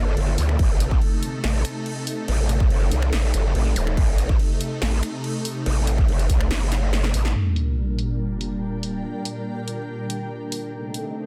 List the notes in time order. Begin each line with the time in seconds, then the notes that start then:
Already playing: G1 D3 A#3 F4 A4
0.17 G1, crash
0.38 D2, open hi-hat
0.49 finger snap
0.59 A1 C3 A3 D#4, kick, crash
0.80 closed hi-hat
0.91 kick
1.01 crash
1.23 closed hi-hat
1.44 A1, snare, crash
1.65 finger snap, closed hi-hat
1.86 crash
2.07 open hi-hat
2.28 A1, crash
2.49 closed hi-hat
2.60 kick
2.70 G1, crash
2.92 C2, closed hi-hat
3.02 finger snap
3.13 A1, snare, crash
3.34 G1, finger snap, closed hi-hat
3.55 A1, crash
3.76 D#1, open hi-hat, zap
3.87 finger snap
3.97 A1, kick, crash
4.18 closed hi-hat
4.29 kick
4.39 crash
4.61 closed hi-hat
4.82 A1, snare, crash
5.03 finger snap, closed hi-hat
5.24 crash
5.45 open hi-hat
5.66 A1, crash
5.87 closed hi-hat
5.98 kick
6.08 G1, crash
6.19 closed hi-hat
6.30 C2, kick, closed hi-hat
6.41 finger snap
6.51 G1, snare, crash
6.72 snare, closed hi-hat
6.93 snare, crash
7.04 snare
7.14 A1, open hi-hat
7.25 snare
7.35 A#2 G3 D4 A#4, sub drop
7.51 A#4
7.56 closed hi-hat
7.65 G5
7.99 closed hi-hat
8.41 closed hi-hat
8.83 open hi-hat
9.25 closed hi-hat
9.68 closed hi-hat
10.10 closed hi-hat
10.52 open hi-hat
10.73 C3 A3 D#4 A4
10.94 closed hi-hat